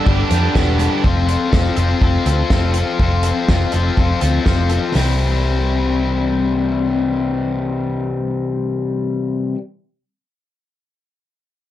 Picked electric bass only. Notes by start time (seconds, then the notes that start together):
0.07 G1
0.31 F2
0.56 E1
1.04 F1
1.53 F1
1.77 F1
2.02 F1
2.26 D2
2.51 F1
2.99 F1
3.48 F1
3.74 F1
3.97 F1
4.22 D2
4.46 F1
4.95 C2